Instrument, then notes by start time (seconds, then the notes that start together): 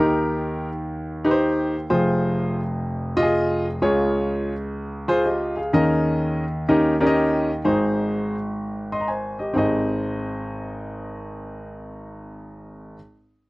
grand piano
Already playing: D#2 D#3 D#4 G4 A#4
1.25 D#4 G4 B4
1.31 C5
1.90 F1 F2 F4 G#4 C5
3.17 F4 G4 D#5
3.23 G#4
3.82 C#2 C#3 F4 G#4 C#5
5.08 F4 G#4 C5
5.25 G4 D#5
5.56 G#4 F5
5.73 D#2 D#3 C#4 D#4 G#4 A#4 D#5
6.68 D#2 D#3 C#4 D#4 G4 A#4 D#5
7.00 C#4 D#4 G4 A#4 D5
7.07 D#5
7.65 G#1 G#2 D#4 G#4 C5
8.92 D#5 C6
9.00 A#5
9.08 C5 G#5
9.39 G4 D#5
9.53 G#1 C4 D#4 G#4
9.58 D#5